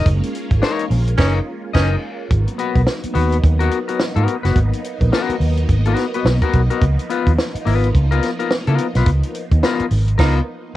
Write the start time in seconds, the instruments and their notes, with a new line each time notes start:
Already playing: string machine G#3 A#3 C#4
0.06 fingered electric bass F#1, string machine F4, kick, closed hi-hat
0.23 closed hi-hat
0.35 closed hi-hat
0.51 fingered electric bass G#1, kick, closed hi-hat
0.62 clean electric guitar D#4 A#4 C#5, snare
0.79 closed hi-hat
0.90 fingered electric bass A#1, open hi-hat
1.07 closed hi-hat
1.17 fingered electric bass F#1, baritone saxophone C#4, clean electric guitar D#4 A#4 C#5, kick, snare, crash
1.73 fingered electric bass F#1, baritone saxophone C#4, clean electric guitar D#4 A#4 D#5, kick, snare, crash
2.30 fingered electric bass G#1, string machine F#3 A#3 B3 D#4, kick, closed hi-hat
2.47 closed hi-hat
2.58 clean electric guitar B3 F#4 B4, closed hi-hat
2.75 fingered electric bass B1, kick, closed hi-hat
2.87 snare
3.03 muted fingered electric bass stroke, closed hi-hat
3.14 fingered electric bass D#2, clean electric guitar B3 F#4 B4, open hi-hat
3.32 closed hi-hat
3.44 fingered electric bass D#2, kick, closed hi-hat
3.59 clean electric guitar B3 F#4 A#4, closed hi-hat
3.71 closed hi-hat
3.88 clean electric guitar B3 F#4 A#4, closed hi-hat
4.00 snare
4.16 fingered electric bass G#2, clean electric guitar B3 F#4 A#4, closed hi-hat
4.28 closed hi-hat
4.43 fingered electric bass F#1, clean electric guitar B3 F#4 B4, snare, closed hi-hat
4.56 fingered electric bass G#1, kick, closed hi-hat
4.73 closed hi-hat
4.85 closed hi-hat
5.01 fingered electric bass A#1, kick, closed hi-hat
5.12 clean electric guitar B3 F#4 A#4, snare
5.29 muted fingered electric bass stroke, closed hi-hat
5.40 fingered electric bass D#2, open hi-hat
5.57 closed hi-hat
5.69 fingered electric bass G#1, kick, closed hi-hat
5.85 clean electric guitar B3 F#4 A#4, closed hi-hat
5.96 snare, closed hi-hat
6.14 clean electric guitar B3 F#4 B4, closed hi-hat
6.25 fingered electric bass B1, snare
6.42 clean electric guitar B3 F#4 A#4, kick, closed hi-hat
6.53 fingered electric bass B1, kick, closed hi-hat
6.70 clean electric guitar B3 F#4 A#4, closed hi-hat
6.82 fingered electric bass C#2, string machine F3, kick, closed hi-hat
6.99 closed hi-hat
7.10 clean electric guitar B3 F4 B4, closed hi-hat
7.27 fingered electric bass D#2, kick, closed hi-hat
7.38 snare
7.55 muted fingered electric bass stroke, closed hi-hat
7.65 fingered electric bass G#1, clean electric guitar B3 F4 B4, open hi-hat
7.84 closed hi-hat
7.95 fingered electric bass C#2, kick, closed hi-hat
8.11 clean electric guitar B3 F4 A#4, closed hi-hat
8.23 snare, closed hi-hat
8.39 clean electric guitar B3 F4 A#4, closed hi-hat
8.51 snare
8.67 fingered electric bass C#3, clean electric guitar B3 F4 A#4, closed hi-hat
8.78 closed hi-hat
8.95 fingered electric bass B1, clean electric guitar B3 F4 B4, snare, closed hi-hat
9.06 fingered electric bass C#2, kick, closed hi-hat
9.23 closed hi-hat
9.35 closed hi-hat
9.52 fingered electric bass D#2, kick, closed hi-hat
9.63 clean electric guitar B3 F4 A#4, snare
9.80 muted fingered electric bass stroke, closed hi-hat
9.91 fingered electric bass G#1, open hi-hat
10.08 closed hi-hat
10.18 fingered electric bass C#2, clean electric guitar B3 F4 A#4, baritone saxophone D#4, kick, snare, crash